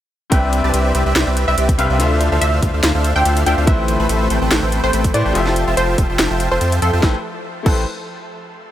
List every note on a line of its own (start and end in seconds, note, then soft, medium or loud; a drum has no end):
0.30 0.62 C2 loud
0.30 1.75 C3 medium
0.30 1.98 C3 medium
0.30 1.76 C4 medium
0.30 0.61 C4 medium
0.30 1.76 D4 medium
0.30 1.98 E4 loud
0.30 0.61 G4 medium
0.30 1.98 B4 medium
0.30 0.61 B4 medium
0.30 1.77 B4 medium
0.30 0.61 D5 medium
0.30 0.61 E5 medium
0.30 1.77 E5 loud
0.30 0.49 G5 loud
0.30 kick loud
0.30 closed hi-hat medium
0.53 closed hi-hat medium
0.64 0.72 C2 loud
0.64 0.71 C4 loud
0.64 0.71 G4 medium
0.64 0.71 B4 medium
0.64 0.71 D5 medium
0.64 0.71 A5 loud
0.74 0.93 C2 loud
0.74 0.92 C4 medium
0.74 0.92 G4 medium
0.74 0.92 B4 medium
0.74 0.92 D5 medium
0.74 0.92 E5 loud
0.74 closed hi-hat medium
0.95 1.04 C2 medium
0.95 1.03 C4 loud
0.95 1.03 G4 medium
0.95 1.03 B4 medium
0.95 1.03 D5 medium
0.95 1.03 E5 loud
0.95 closed hi-hat medium
1.06 1.14 C2 loud
1.06 1.13 C4 medium
1.06 1.13 G4 medium
1.06 1.13 B4 medium
1.06 1.13 D5 medium
1.06 1.13 E5 loud
1.16 1.25 C2 loud
1.16 1.24 C4 medium
1.16 1.24 G4 medium
1.16 1.24 B4 medium
1.16 1.24 D5 medium
1.16 1.24 E5 medium
1.16 snare loud
1.16 closed hi-hat medium
1.27 1.46 C2 loud
1.27 1.45 C4 medium
1.27 1.45 G4 medium
1.27 1.45 B4 medium
1.27 1.45 D5 medium
1.27 1.45 E5 loud
1.37 closed hi-hat medium
1.48 1.56 C2 medium
1.48 1.55 C4 medium
1.48 1.55 G4 medium
1.48 1.55 B4 medium
1.48 1.55 D5 medium
1.48 1.65 E5 medium
1.48 1.55 E5 loud
1.58 1.77 C2 loud
1.58 1.76 C4 medium
1.58 1.76 G4 medium
1.58 1.76 B4 medium
1.58 1.76 D5 medium
1.58 1.76 E5 loud
1.58 closed hi-hat medium
1.69 kick medium
1.69 closed hi-hat medium
1.78 1.88 C2 loud
1.78 1.97 C3 medium
1.78 1.97 C4 medium
1.78 1.87 C4 medium
1.78 1.97 D4 medium
1.78 1.87 G4 medium
1.78 1.87 B4 medium
1.78 1.97 B4 medium
1.78 1.87 D5 medium
1.78 1.98 E5 loud
1.78 1.96 F5 medium
1.78 1.87 G5 medium
1.78 closed hi-hat medium
1.90 2.01 C2 loud
1.90 1.97 C4 loud
1.90 1.97 G4 medium
1.90 1.97 B4 medium
1.90 1.97 D5 medium
1.90 1.97 E5 loud
1.98 2.30 D2 loud
1.98 3.43 D3 loud
1.98 3.66 D3 medium
1.98 5.32 C4 medium
1.98 3.44 D4 medium
1.98 2.29 D4 medium
1.98 3.66 F4 loud
1.98 3.44 F4 medium
1.98 2.29 A4 medium
1.98 2.29 C5 medium
1.98 3.45 C5 medium
1.98 2.29 E5 medium
1.98 3.45 E5 loud
1.98 2.29 F5 medium
1.98 closed hi-hat medium
2.21 closed hi-hat medium
2.32 2.40 D2 medium
2.32 2.39 D4 loud
2.32 2.39 A4 medium
2.32 2.39 C5 medium
2.32 2.39 E5 medium
2.32 2.39 F5 loud
2.41 2.61 D2 loud
2.41 2.60 D4 loud
2.41 2.60 A4 medium
2.41 2.60 C5 medium
2.41 2.65 E5 medium
2.41 2.60 E5 medium
2.41 2.60 F5 loud
2.41 closed hi-hat medium
2.62 2.72 D2 medium
2.62 2.71 D4 medium
2.62 2.71 A4 medium
2.62 2.71 C5 medium
2.62 2.71 E5 medium
2.62 2.71 F5 loud
2.62 kick medium
2.62 closed hi-hat medium
2.74 2.82 D2 medium
2.74 2.81 D4 medium
2.74 2.81 A4 medium
2.74 2.81 C5 medium
2.74 2.81 E5 medium
2.74 2.81 F5 loud
2.83 2.93 D2 loud
2.83 2.92 D4 medium
2.83 2.92 A4 medium
2.83 2.92 C5 medium
2.83 2.92 E5 medium
2.83 2.92 F5 medium
2.83 snare loud
2.83 closed hi-hat medium
2.95 3.14 D2 loud
2.95 3.13 D4 medium
2.95 3.13 A4 medium
2.95 3.13 C5 medium
2.95 3.13 E5 medium
2.95 3.13 F5 loud
3.04 closed hi-hat medium
3.16 3.24 D2 medium
3.16 3.23 D4 medium
3.16 3.23 A4 medium
3.16 3.23 C5 medium
3.16 3.23 E5 medium
3.16 3.23 F5 loud
3.16 3.33 G5 loud
3.25 3.45 D2 loud
3.25 3.44 D4 loud
3.25 3.44 A4 medium
3.25 3.44 C5 medium
3.25 3.44 E5 medium
3.25 3.44 F5 loud
3.25 closed hi-hat medium
3.37 closed hi-hat medium
3.45 3.55 D2 loud
3.45 3.65 D3 medium
3.45 3.65 D4 medium
3.45 3.55 D4 medium
3.45 3.65 F4 medium
3.45 3.55 A4 medium
3.45 3.55 C5 medium
3.45 3.65 C5 medium
3.45 3.55 E5 medium
3.45 3.66 E5 loud
3.45 3.55 F5 medium
3.45 3.59 G5 medium
3.45 closed hi-hat medium
3.58 3.69 D2 loud
3.58 3.65 D4 loud
3.58 3.65 A4 medium
3.58 3.65 C5 medium
3.58 3.65 E5 medium
3.58 3.65 F5 loud
3.65 3.97 A1 loud
3.65 5.11 A3 loud
3.65 5.34 A3 medium
3.65 3.97 A3 medium
3.65 5.11 E4 medium
3.65 5.12 G4 medium
3.65 5.34 G4 loud
3.65 3.97 A4 medium
3.65 3.97 B4 medium
3.65 5.12 B4 medium
3.65 3.97 C5 medium
3.65 5.13 C5 loud
3.65 3.85 E5 medium
3.65 kick loud
3.65 closed hi-hat medium
3.88 closed hi-hat medium
4.00 4.07 A1 loud
4.00 4.07 A3 loud
4.00 4.07 A4 loud
4.00 4.07 B4 medium
4.00 4.07 C5 medium
4.00 4.07 B5 loud
4.09 4.28 A1 loud
4.09 4.28 A3 medium
4.09 4.28 A4 medium
4.09 4.28 B4 medium
4.09 4.28 C5 medium
4.09 4.28 E5 loud
4.09 closed hi-hat medium
4.30 4.39 A1 loud
4.30 4.39 A3 loud
4.30 4.39 A4 medium
4.30 4.39 B4 medium
4.30 4.39 C5 medium
4.30 4.39 G5 loud
4.30 closed hi-hat medium
4.42 4.49 A1 medium
4.42 4.49 A3 medium
4.42 4.49 A4 medium
4.42 4.49 B4 medium
4.42 4.49 C5 medium
4.42 4.49 G5 loud
4.51 4.60 A1 loud
4.51 4.60 A3 medium
4.51 4.60 A4 medium
4.51 4.60 B4 medium
4.51 4.60 C5 medium
4.51 4.60 G5 loud
4.51 snare loud
4.51 closed hi-hat medium
4.63 4.81 A1 loud
4.63 4.81 A3 medium
4.63 4.81 A4 medium
4.63 4.81 B4 medium
4.63 4.81 C5 medium
4.63 4.81 G5 loud
4.72 closed hi-hat medium
4.84 4.91 A1 medium
4.84 4.91 A3 medium
4.84 4.91 A4 medium
4.84 4.91 B4 medium
4.84 5.01 C5 loud
4.84 4.91 C5 medium
4.84 4.91 G5 loud
4.93 5.12 A1 loud
4.93 5.12 A3 medium
4.93 5.12 A4 medium
4.93 5.12 B4 medium
4.93 5.12 C5 medium
4.93 5.12 G5 loud
4.93 closed hi-hat medium
5.04 kick medium
5.04 closed hi-hat medium
5.13 5.23 A2 loud
5.13 5.32 A3 medium
5.13 5.23 A3 medium
5.13 5.33 E4 medium
5.13 5.33 G4 medium
5.13 5.23 A4 medium
5.13 5.23 B4 medium
5.13 5.33 B4 medium
5.13 5.23 C5 medium
5.13 5.33 C5 loud
5.13 5.32 D5 medium
5.13 5.23 A5 medium
5.13 closed hi-hat medium
5.25 5.33 A1 loud
5.25 5.33 A3 loud
5.25 5.33 A4 medium
5.25 5.33 B4 medium
5.25 5.33 C5 medium
5.25 5.33 G5 loud
5.33 5.65 F1 loud
5.33 6.79 F3 medium
5.33 7.02 F3 medium
5.33 6.79 F4 medium
5.33 5.65 F4 medium
5.33 6.80 G4 medium
5.33 7.01 A4 medium
5.33 6.80 A4 medium
5.33 5.65 C5 medium
5.33 5.65 E5 medium
5.33 7.01 E5 medium
5.33 5.65 G5 medium
5.33 5.65 A5 medium
5.33 closed hi-hat medium
5.37 6.81 E5 loud
5.46 snare soft
5.56 closed hi-hat medium
5.67 5.75 F1 medium
5.67 5.75 F4 loud
5.67 5.75 C5 medium
5.67 5.75 E5 medium
5.67 5.75 G5 medium
5.67 5.75 A5 loud
5.77 5.96 F1 loud
5.77 5.96 F4 loud
5.77 6.01 C5 loud
5.77 5.96 C5 medium
5.77 5.96 E5 medium
5.77 5.96 G5 medium
5.77 5.96 A5 loud
5.77 closed hi-hat medium
5.98 6.07 F1 loud
5.98 6.07 F4 loud
5.98 6.07 C5 medium
5.98 6.07 E5 medium
5.98 6.07 G5 medium
5.98 6.07 A5 loud
5.98 kick medium
5.98 closed hi-hat medium
6.09 6.17 F1 loud
6.09 6.17 F4 medium
6.09 6.17 C5 medium
6.09 6.17 E5 medium
6.09 6.17 G5 medium
6.09 6.17 A5 loud
6.19 6.28 F1 loud
6.19 6.28 F4 medium
6.19 6.28 C5 medium
6.19 6.28 E5 medium
6.19 6.28 G5 medium
6.19 6.28 A5 loud
6.19 snare loud
6.19 closed hi-hat medium
6.30 6.49 F1 loud
6.30 6.49 F4 medium
6.30 6.49 C5 medium
6.30 6.49 E5 medium
6.30 6.49 G5 medium
6.30 6.49 A5 medium
6.40 closed hi-hat medium
6.51 6.59 F1 loud
6.51 6.59 F4 medium
6.51 6.59 C5 medium
6.51 6.69 C5 loud
6.51 6.59 E5 medium
6.51 6.59 G5 medium
6.51 6.59 A5 loud
6.61 6.80 F2 loud
6.61 6.80 F4 medium
6.61 6.80 C5 medium
6.61 6.80 E5 medium
6.61 6.80 G5 medium
6.61 6.80 A5 loud
6.61 closed hi-hat medium
6.72 closed hi-hat medium
6.82 6.91 F2 loud
6.82 6.91 F4 medium
6.82 6.94 A4 medium
6.82 6.91 C5 medium
6.82 6.91 E5 medium
6.82 6.91 G5 medium
6.82 6.91 C6 medium
6.82 closed hi-hat medium
6.93 7.01 F2 loud
6.93 7.01 F4 loud
6.93 7.01 C5 medium
6.93 7.01 E5 medium
6.93 7.01 G5 medium
6.93 7.01 A5 loud
7.00 7.15 A1 loud
7.00 7.14 A3 medium
7.00 7.15 E4 medium
7.00 7.15 G4 medium
7.00 7.15 A4 medium
7.00 kick loud
7.00 snare medium
7.05 7.16 B4 medium
7.05 7.17 C5 medium
7.63 7.86 A1 loud
7.63 7.80 A3 medium
7.63 7.82 A3 medium
7.63 7.81 E4 medium
7.63 7.82 G4 medium
7.63 7.82 A4 medium
7.63 7.82 B4 medium
7.63 7.82 C5 medium
7.63 7.82 G5 medium
7.63 kick loud
7.63 crash medium
7.67 7.83 B4 medium
7.67 7.83 C5 medium